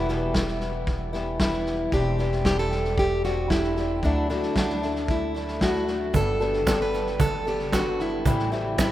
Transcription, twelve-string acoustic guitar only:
0.09 E2 B2 E3 G3 B3 E4
0.35 E3 G3 B3 E4
1.13 E3 G3 B3 E4
1.40 E3 G3 B3 E4
1.92 E3 C4 D4 G4
2.18 E3 C4 D4 G4
2.45 E3 C4 D4 G4
2.71 C4 D4 G4
3.24 C4 D4 G4
3.50 E3 C4 D4 G4
3.77 C4 D4 G4
4.03 D3 F#3 A3 D4 E4
4.29 D3 F#3 A3 D4 E4
4.56 F#3 A3 D4 E4
4.82 A3 D4 E4
5.35 A3 D4 E4
5.61 F#3 A3 D4 E4
5.87 A3 D4 E4
6.13 G3 B3 D4 A4
6.40 G3 B3 D4 A4
6.66 G3 B3 D4 A4
7.45 B3 D4 A4
7.72 G3 B3 D4 A4
8.25 A2 E3 G3 C4 E4
8.52 A2 E3 G3 C4 E4
8.78 E3 G3 C4 E4

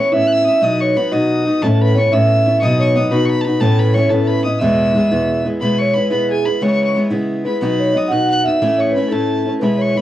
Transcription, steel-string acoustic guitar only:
Already playing: E3 B3 C#4 E4
0.12 A2 E3 B3 C#4 E4
0.46 B3 C#4 E4
0.61 B2 F#3 B3 D#4 F#4
0.95 F#3 B3 D#4 F#4
1.12 B2 F#3 B3 D#4 F#4
1.45 B3 D#4 F#4
1.61 A2 E3 B3 C#4 E4
1.95 E3 B3 C#4 E4
2.11 A2 E3 B3 C#4 E4
2.46 B3 C#4 E4
2.62 B2 F#3 B3 D#4 F#4
2.95 F#3 B3 D#4 F#4
3.11 B2 F#3 B3 D#4 F#4
3.45 B3 D#4 F#4
3.60 A2 E3 B3 C#4 E4
3.95 E3 B3 C#4 E4
4.10 A2 E3 B3 C#4 E4
4.45 B3 C#4 E4
4.60 E2 B2 E3 G#3 B3 E4
4.94 E3 G#3 B3 E4
5.11 E2 B2 E3 G#3 B3 E4
5.44 E3 G#3 B3 E4
5.61 E2 B2 E3 G#3 B3 E4
5.94 E3 G#3 B3 E4
6.10 E2 B2 E3 G#3 B3 E4
6.46 E3 G#3 B3 E4
6.61 C#3 E3 G#3 B3 E4
6.95 E3 G#3 B3 E4
7.10 C#3 E3 G#3 B3 E4
7.45 G#3 B3 E4
7.61 B2 F#3 B3 D#4 F#4
7.95 F#3 B3 D#4 F#4
8.11 B2 F#3 B3 D#4 F#4
8.45 B3 D#4 F#4
8.61 A2 E3 A3 C#4 E4
8.95 E3 A3 C#4 E4
9.11 A2 E3 A3 C#4 E4
9.45 A3 C#4 E4
9.61 E2 B2 E3 G#3 B3 E4
9.96 E3 G#3 B3

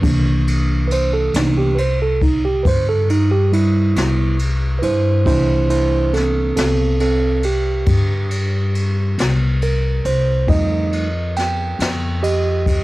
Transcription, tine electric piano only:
0.01 E3 A#3 D4
0.88 B4
0.92 C5
1.13 A4
1.34 E3 A#3 D4 D#4
1.58 G4
1.75 B4
1.79 C5
2.02 A4
2.23 D#4
2.45 G4
2.63 B4 C5
2.89 A4
3.10 D#4
3.31 G4
3.52 G3 E4
4.79 E4 B4
4.84 C5
5.25 E3 A#3 D4 E4 C5
5.70 E4 C5
6.13 C4 A4
6.56 C4 A4
7.00 C4 A4
7.45 G4
9.63 A#4
10.06 C5
10.47 G3 A3 D#4 D#5
11.37 G5
12.23 G4 D#5

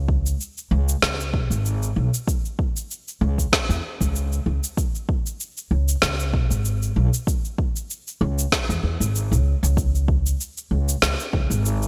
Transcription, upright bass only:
Already playing: C#2
0.71 C#2
1.03 C#2
1.34 B1
1.50 G#1
1.96 B1
3.21 C#2
3.69 E2
4.01 C#2
4.46 C#2
5.71 C#2
6.02 C#2
6.33 B1
6.51 G#1
6.96 B1
8.21 C#2
8.69 E2
8.83 E2
9.00 G#1
9.31 C#2
9.63 C#2
10.71 C#2
11.02 C#2
11.33 C#2
11.50 G#1

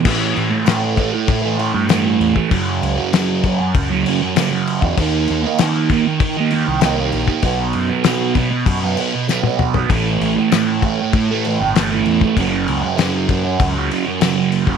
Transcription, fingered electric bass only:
0.05 A2
0.37 A2
0.67 A2
1.28 A2
1.74 G2
2.20 E2
2.51 F#2
2.82 C#2
3.13 F#3
3.75 C#2
4.82 E2
4.98 D#2
5.30 D#2
5.60 D#3
6.20 D#3
6.68 C2
7.13 A#1
7.43 B1
7.75 F#2
8.05 B2
8.66 F#2
9.74 B1
9.90 A1
10.21 A1
10.52 A2
11.13 A2
11.61 G1
12.06 E2
12.37 F#1
12.68 C#2
12.98 F#2
13.60 C#2
14.67 F#1

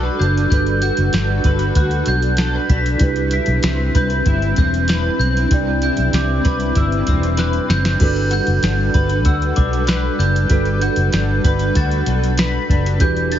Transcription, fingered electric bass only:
0.20 F#1
0.51 G1
0.98 F#1
1.13 G1
1.44 G1
1.76 D2
2.07 B1
2.69 B1
3.00 C2
3.48 B1
3.63 C2
3.95 C2
4.26 G1
4.58 E1
5.19 B1
5.51 C2
5.98 B1
6.13 C2
6.45 C2
6.76 G1
7.07 E1
7.69 F#1
8.01 G1
8.47 F#1
8.63 G1
8.95 G1
9.26 D2
9.58 B1
10.19 F#1
10.50 G1
10.97 F#1
11.13 G1
11.44 G1
11.75 D2
12.07 B1
12.69 F#1
13.00 E1

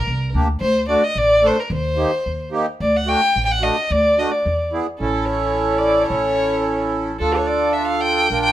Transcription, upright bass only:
0.07 C2
0.34 D2
0.61 D2
1.15 A1
1.70 D#2
2.26 D#2
2.80 D2
3.36 A1
3.90 D2
4.46 E2
5.00 A1
6.10 A1
7.20 D2
8.30 A#1

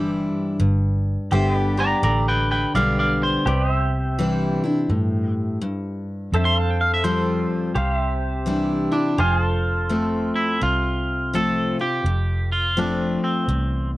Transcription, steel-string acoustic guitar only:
Already playing: G2 E3 G3 D4 E4
0.60 G2
1.31 D3 G3 B3 G4
1.77 B3 G4
2.03 D3
2.75 D3 G3 B3 G4
3.47 C3
4.19 E3 G3 D4 E4
4.63 D4 E4
4.89 A2
5.61 G2
6.33 F2
7.04 F3 G3 C4 F4
7.76 C3
8.46 E3 G3 D4 E4
8.92 D4 E4
9.18 F2
9.89 F3 A3 C4
10.61 C3
11.34 F3 A3 C4 F4
11.79 C4 F4
12.06 F2
12.77 F3 A3 C4 F4
13.49 E2

